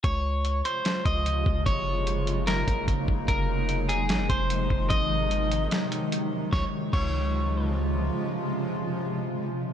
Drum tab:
CC |--------|--------|--------|--------|
HH |x-xxxxx-|x-xxxxx-|x-xxxxx-|x-xxxxx-|
SD |----o---|----o---|----o---|----o---|
BD |o----o-o|o----ooo|o----o-o|o-------|

CC |--x-----|--------|
HH |--------|--------|
SD |o-------|--------|
BD |o-o-----|--------|